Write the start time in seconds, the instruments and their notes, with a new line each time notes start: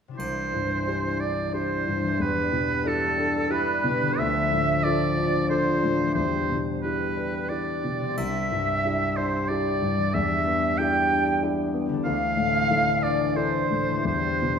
0.08 harp C3 D4
0.14 harp E4 G4
0.18 grand piano C2, french horn section E3 D4, oboe C5, flute section C5, triangle
0.54 grand piano G2
0.87 grand piano D4 E4 G4
1.20 grand piano D4, flute section D5, oboe D5
1.52 grand piano D4 E4 G4, flute section C5, oboe C5
1.87 grand piano G2
2.03 harp E3
2.07 harp D4
2.12 harp E4
2.17 grand piano E2, french horn section G3, harp G4
2.21 flute section B4, oboe B4
2.52 grand piano B2
2.85 grand piano D4 E4 G4, flute section A4, oboe A4
3.17 grand piano D4
3.49 grand piano D4 E4 G4, flute section B4, oboe B4
3.84 grand piano B2
4.01 harp D3
4.06 harp D4
4.10 harp F4
4.15 french horn section F3 D4, harp A4, flute section E5, oboe E5
4.19 grand piano D2
4.52 grand piano A2
4.84 grand piano D4 F4 A4, flute section D5, oboe D5
5.17 grand piano D4
5.48 grand piano D4 F4 A4, flute section C5, oboe C5
5.83 grand piano A2
5.98 harp E3
6.02 harp D4
6.07 harp E4
6.11 french horn section G3, harp G4, oboe C5, flute section C5
6.16 grand piano E2
6.50 grand piano B2
6.81 grand piano D4 E4 G4, flute section B4, oboe B4
7.17 grand piano D4
7.47 grand piano D4 E4 G4, flute section D5, oboe D5
7.84 grand piano B2
7.99 harp C3
8.04 harp D4
8.09 harp C4
8.13 french horn section D4, harp G4
8.17 grand piano C2, flute section E5, oboe E5, triangle
8.51 grand piano G2
8.84 grand piano D4 E4 G4
9.17 grand piano D4, oboe C5, flute section C5
9.48 grand piano D4 E4 G4, oboe D5, flute section D5
9.82 grand piano G2
9.98 harp E3
10.02 harp D4
10.11 grand piano E2, french horn section G3, harp G4, oboe E5, flute section E5
10.47 grand piano B3
10.78 grand piano D4 E4 G4, oboe G5, flute section G5
11.11 grand piano D4
11.43 grand piano D4 E4 G4
11.74 grand piano B3
11.89 harp D3
11.94 harp D4
12.03 grand piano D2, french horn section E3 D4, harp A4, flute section F5, oboe F5
12.37 grand piano A2
12.70 grand piano E3 D4 A4
13.03 grand piano D4, oboe D5, flute section D5
13.36 grand piano D4 E4 A4, flute section C5, oboe C5
13.70 grand piano A2
13.88 harp E3
13.92 harp D4
13.97 harp E4
14.01 grand piano E2, harp G4, flute section C5
14.05 french horn section G3, oboe C5
14.42 grand piano B2